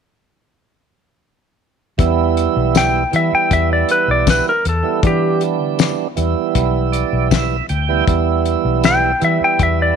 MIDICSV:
0, 0, Header, 1, 6, 480
1, 0, Start_track
1, 0, Key_signature, 1, "minor"
1, 0, Tempo, 760360
1, 1256, Time_signature, 4, 2, 24, 8
1, 6288, End_track
2, 0, Start_track
2, 0, Title_t, "Electric slide guitar"
2, 0, Program_c, 0, 29
2, 1751, Note_on_c, 0, 79, 85
2, 1977, Note_off_c, 0, 79, 0
2, 1994, Note_on_c, 0, 76, 71
2, 2102, Note_off_c, 0, 76, 0
2, 2113, Note_on_c, 0, 79, 91
2, 2221, Note_off_c, 0, 79, 0
2, 2230, Note_on_c, 0, 76, 91
2, 2340, Note_off_c, 0, 76, 0
2, 2354, Note_on_c, 0, 74, 71
2, 2461, Note_off_c, 0, 74, 0
2, 2471, Note_on_c, 0, 71, 82
2, 2581, Note_off_c, 0, 71, 0
2, 2595, Note_on_c, 0, 74, 79
2, 2702, Note_off_c, 0, 74, 0
2, 2716, Note_on_c, 0, 71, 75
2, 2823, Note_off_c, 0, 71, 0
2, 2835, Note_on_c, 0, 70, 74
2, 2942, Note_off_c, 0, 70, 0
2, 2960, Note_on_c, 0, 69, 68
2, 3181, Note_off_c, 0, 69, 0
2, 3199, Note_on_c, 0, 67, 93
2, 3421, Note_off_c, 0, 67, 0
2, 5588, Note_on_c, 0, 79, 94
2, 5815, Note_off_c, 0, 79, 0
2, 5836, Note_on_c, 0, 76, 70
2, 5944, Note_off_c, 0, 76, 0
2, 5961, Note_on_c, 0, 79, 85
2, 6065, Note_off_c, 0, 79, 0
2, 6079, Note_on_c, 0, 76, 78
2, 6185, Note_off_c, 0, 76, 0
2, 6200, Note_on_c, 0, 74, 80
2, 6288, Note_off_c, 0, 74, 0
2, 6288, End_track
3, 0, Start_track
3, 0, Title_t, "Tonewheel organ"
3, 0, Program_c, 1, 16
3, 1250, Note_on_c, 1, 52, 97
3, 1253, Note_on_c, 1, 55, 83
3, 1257, Note_on_c, 1, 59, 72
3, 1262, Note_on_c, 1, 64, 99
3, 1914, Note_off_c, 1, 52, 0
3, 1916, Note_off_c, 1, 55, 0
3, 1918, Note_off_c, 1, 59, 0
3, 1920, Note_off_c, 1, 64, 0
3, 1965, Note_on_c, 1, 52, 66
3, 1972, Note_on_c, 1, 55, 60
3, 1975, Note_on_c, 1, 59, 58
3, 1980, Note_on_c, 1, 64, 68
3, 2852, Note_off_c, 1, 52, 0
3, 2856, Note_off_c, 1, 55, 0
3, 2857, Note_off_c, 1, 59, 0
3, 2860, Note_off_c, 1, 64, 0
3, 3047, Note_on_c, 1, 52, 73
3, 3050, Note_on_c, 1, 55, 63
3, 3057, Note_on_c, 1, 59, 68
3, 3060, Note_on_c, 1, 64, 80
3, 3161, Note_off_c, 1, 52, 0
3, 3163, Note_off_c, 1, 55, 0
3, 3166, Note_off_c, 1, 59, 0
3, 3168, Note_off_c, 1, 64, 0
3, 3168, Note_on_c, 1, 52, 75
3, 3171, Note_on_c, 1, 55, 70
3, 3177, Note_on_c, 1, 59, 76
3, 3179, Note_on_c, 1, 62, 74
3, 3834, Note_off_c, 1, 52, 0
3, 3835, Note_off_c, 1, 55, 0
3, 3838, Note_off_c, 1, 59, 0
3, 3839, Note_off_c, 1, 62, 0
3, 3889, Note_on_c, 1, 52, 73
3, 3892, Note_on_c, 1, 55, 78
3, 3895, Note_on_c, 1, 59, 72
3, 3901, Note_on_c, 1, 64, 76
3, 4371, Note_on_c, 1, 74, 62
3, 4597, Note_off_c, 1, 74, 0
3, 4614, Note_on_c, 1, 76, 65
3, 4774, Note_off_c, 1, 52, 0
3, 4776, Note_off_c, 1, 55, 0
3, 4777, Note_off_c, 1, 59, 0
3, 4780, Note_off_c, 1, 64, 0
3, 4838, Note_off_c, 1, 76, 0
3, 4856, Note_on_c, 1, 79, 73
3, 4977, Note_on_c, 1, 52, 84
3, 4980, Note_on_c, 1, 55, 86
3, 4983, Note_on_c, 1, 59, 85
3, 4988, Note_on_c, 1, 64, 93
3, 5079, Note_off_c, 1, 79, 0
3, 5080, Note_off_c, 1, 52, 0
3, 5086, Note_off_c, 1, 55, 0
3, 5088, Note_on_c, 1, 52, 89
3, 5089, Note_off_c, 1, 59, 0
3, 5092, Note_off_c, 1, 64, 0
3, 5094, Note_on_c, 1, 55, 81
3, 5097, Note_on_c, 1, 59, 78
3, 5102, Note_on_c, 1, 64, 96
3, 5753, Note_off_c, 1, 52, 0
3, 5757, Note_off_c, 1, 55, 0
3, 5758, Note_off_c, 1, 59, 0
3, 5761, Note_off_c, 1, 64, 0
3, 5809, Note_on_c, 1, 52, 69
3, 5812, Note_on_c, 1, 55, 60
3, 5815, Note_on_c, 1, 59, 54
3, 5817, Note_on_c, 1, 64, 67
3, 6288, Note_off_c, 1, 52, 0
3, 6288, Note_off_c, 1, 55, 0
3, 6288, Note_off_c, 1, 59, 0
3, 6288, Note_off_c, 1, 64, 0
3, 6288, End_track
4, 0, Start_track
4, 0, Title_t, "Fingered electric bass"
4, 0, Program_c, 2, 33
4, 1257, Note_on_c, 2, 40, 85
4, 1554, Note_off_c, 2, 40, 0
4, 1619, Note_on_c, 2, 35, 82
4, 1915, Note_off_c, 2, 35, 0
4, 1978, Note_on_c, 2, 52, 78
4, 2077, Note_off_c, 2, 52, 0
4, 2216, Note_on_c, 2, 40, 107
4, 2414, Note_off_c, 2, 40, 0
4, 2575, Note_on_c, 2, 35, 80
4, 2774, Note_off_c, 2, 35, 0
4, 2939, Note_on_c, 2, 40, 81
4, 3037, Note_off_c, 2, 40, 0
4, 3178, Note_on_c, 2, 52, 81
4, 3539, Note_off_c, 2, 52, 0
4, 3539, Note_on_c, 2, 50, 72
4, 3736, Note_off_c, 2, 50, 0
4, 3898, Note_on_c, 2, 40, 77
4, 3997, Note_off_c, 2, 40, 0
4, 4137, Note_on_c, 2, 35, 105
4, 4434, Note_off_c, 2, 35, 0
4, 4500, Note_on_c, 2, 35, 80
4, 4795, Note_off_c, 2, 35, 0
4, 4861, Note_on_c, 2, 38, 80
4, 5057, Note_off_c, 2, 38, 0
4, 5098, Note_on_c, 2, 40, 87
4, 5395, Note_off_c, 2, 40, 0
4, 5459, Note_on_c, 2, 35, 86
4, 5754, Note_off_c, 2, 35, 0
4, 5820, Note_on_c, 2, 52, 83
4, 5918, Note_off_c, 2, 52, 0
4, 6058, Note_on_c, 2, 40, 105
4, 6255, Note_off_c, 2, 40, 0
4, 6288, End_track
5, 0, Start_track
5, 0, Title_t, "Muted fingered electric bass strokes"
5, 2099, Note_on_c, 9, 29, 34
5, 2162, Note_off_c, 9, 29, 0
5, 5938, Note_on_c, 9, 29, 33
5, 6001, Note_off_c, 9, 29, 0
5, 6288, End_track
6, 0, Start_track
6, 0, Title_t, "Drums"
6, 1254, Note_on_c, 9, 42, 82
6, 1255, Note_on_c, 9, 36, 100
6, 1317, Note_off_c, 9, 42, 0
6, 1318, Note_off_c, 9, 36, 0
6, 1496, Note_on_c, 9, 42, 63
6, 1560, Note_off_c, 9, 42, 0
6, 1735, Note_on_c, 9, 42, 74
6, 1735, Note_on_c, 9, 54, 104
6, 1741, Note_on_c, 9, 38, 96
6, 1798, Note_off_c, 9, 42, 0
6, 1798, Note_off_c, 9, 54, 0
6, 1804, Note_off_c, 9, 38, 0
6, 1977, Note_on_c, 9, 42, 60
6, 2040, Note_off_c, 9, 42, 0
6, 2216, Note_on_c, 9, 36, 66
6, 2216, Note_on_c, 9, 42, 70
6, 2279, Note_off_c, 9, 36, 0
6, 2279, Note_off_c, 9, 42, 0
6, 2453, Note_on_c, 9, 42, 66
6, 2517, Note_off_c, 9, 42, 0
6, 2695, Note_on_c, 9, 42, 87
6, 2695, Note_on_c, 9, 54, 109
6, 2696, Note_on_c, 9, 36, 78
6, 2701, Note_on_c, 9, 38, 99
6, 2758, Note_off_c, 9, 42, 0
6, 2758, Note_off_c, 9, 54, 0
6, 2759, Note_off_c, 9, 36, 0
6, 2764, Note_off_c, 9, 38, 0
6, 2937, Note_on_c, 9, 42, 65
6, 3000, Note_off_c, 9, 42, 0
6, 3175, Note_on_c, 9, 42, 79
6, 3176, Note_on_c, 9, 36, 111
6, 3239, Note_off_c, 9, 36, 0
6, 3239, Note_off_c, 9, 42, 0
6, 3414, Note_on_c, 9, 42, 57
6, 3477, Note_off_c, 9, 42, 0
6, 3654, Note_on_c, 9, 42, 76
6, 3654, Note_on_c, 9, 54, 104
6, 3660, Note_on_c, 9, 38, 97
6, 3717, Note_off_c, 9, 42, 0
6, 3717, Note_off_c, 9, 54, 0
6, 3723, Note_off_c, 9, 38, 0
6, 3894, Note_on_c, 9, 42, 64
6, 3958, Note_off_c, 9, 42, 0
6, 4135, Note_on_c, 9, 42, 75
6, 4136, Note_on_c, 9, 36, 65
6, 4198, Note_off_c, 9, 42, 0
6, 4199, Note_off_c, 9, 36, 0
6, 4377, Note_on_c, 9, 42, 63
6, 4440, Note_off_c, 9, 42, 0
6, 4616, Note_on_c, 9, 42, 75
6, 4616, Note_on_c, 9, 54, 103
6, 4617, Note_on_c, 9, 36, 72
6, 4622, Note_on_c, 9, 38, 111
6, 4679, Note_off_c, 9, 42, 0
6, 4679, Note_off_c, 9, 54, 0
6, 4680, Note_off_c, 9, 36, 0
6, 4686, Note_off_c, 9, 38, 0
6, 4855, Note_on_c, 9, 42, 51
6, 4918, Note_off_c, 9, 42, 0
6, 5097, Note_on_c, 9, 36, 94
6, 5098, Note_on_c, 9, 42, 73
6, 5161, Note_off_c, 9, 36, 0
6, 5161, Note_off_c, 9, 42, 0
6, 5337, Note_on_c, 9, 42, 56
6, 5400, Note_off_c, 9, 42, 0
6, 5577, Note_on_c, 9, 42, 74
6, 5577, Note_on_c, 9, 54, 108
6, 5584, Note_on_c, 9, 38, 104
6, 5641, Note_off_c, 9, 42, 0
6, 5641, Note_off_c, 9, 54, 0
6, 5647, Note_off_c, 9, 38, 0
6, 5817, Note_on_c, 9, 42, 60
6, 5880, Note_off_c, 9, 42, 0
6, 6055, Note_on_c, 9, 42, 69
6, 6057, Note_on_c, 9, 36, 70
6, 6119, Note_off_c, 9, 42, 0
6, 6120, Note_off_c, 9, 36, 0
6, 6288, End_track
0, 0, End_of_file